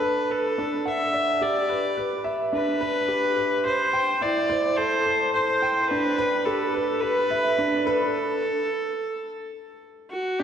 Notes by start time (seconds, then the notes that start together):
Already playing: D4 A4 B4
0.00 B4
0.30 A4 B4
0.58 D4
0.85 E5 F#5
1.14 D5
1.41 G4 D5
1.69 B4
1.97 B4
2.24 E5
2.53 D4 B4
2.81 B4
3.08 G4
3.37 B4
3.65 C5
3.93 G5
4.21 E4 D5
4.50 C5
4.77 A4 C5
5.06 C5
5.33 C5
5.62 G5
5.82 C5
5.88 D4 B4
6.18 B4
6.45 G4 A4
6.74 B4
7.00 B4
7.30 E5
7.58 D4
7.85 A4 B4
10.11 F#4
10.39 D4 G4